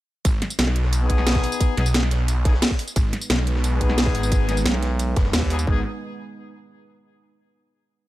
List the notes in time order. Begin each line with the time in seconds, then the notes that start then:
0.25 G#1, kick, closed hi-hat, ride, tambourine
0.42 snare, closed hi-hat, ride
0.50 tambourine
0.59 B1, snare, closed hi-hat, ride, tambourine
0.67 snare
0.76 closed hi-hat, ride
0.84 snare
0.93 closed hi-hat, ride, tambourine
1.01 B3 D#4 G#4
1.10 kick, closed hi-hat, ride
1.18 snare
1.27 snare, closed hi-hat, ride, tambourine
1.35 kick
1.44 open hi-hat, ride
1.52 tambourine
1.60 kick, closed hi-hat, ride, tambourine
1.77 B1 B3 D#4 G#4, snare, closed hi-hat, ride
1.86 tambourine
1.94 snare, closed hi-hat, ride, tambourine
2.03 snare
2.11 snare, closed hi-hat, ride
2.28 closed hi-hat, ride, tambourine
2.45 B3 D#4 G#4, kick, snare, closed hi-hat, ride
2.54 snare
2.62 snare, closed hi-hat, ride, tambourine
2.71 kick
2.79 open hi-hat, ride
2.88 tambourine
2.96 G#1 G#3 B3 D#4 B4, kick, closed hi-hat, ride, tambourine
3.13 snare, closed hi-hat, ride
3.21 tambourine
3.30 B1, snare, closed hi-hat, ride, tambourine
3.38 snare
3.47 closed hi-hat, ride
3.55 snare
3.64 closed hi-hat, ride, tambourine
3.72 B3 D#4 G#4
3.81 kick, closed hi-hat, ride
3.89 snare
3.98 snare, closed hi-hat, ride, tambourine
4.06 kick
4.15 G#1, open hi-hat, ride
4.23 tambourine
4.32 kick, closed hi-hat, ride, tambourine
4.49 B3 D#4 G#4, snare, closed hi-hat, ride, tambourine
4.57 tambourine
4.66 B1, snare, closed hi-hat, ride, tambourine
4.74 snare
4.82 snare, closed hi-hat, ride
4.99 closed hi-hat, ride, tambourine
5.16 F#1, kick, snare, closed hi-hat, ride
5.25 snare
5.33 D#2, snare, closed hi-hat, ride, tambourine
5.42 kick
5.50 B3 D#4 G#4, open hi-hat, ride
5.59 tambourine
5.67 G#1 G#3 B3 D#4 G#4 B4, kick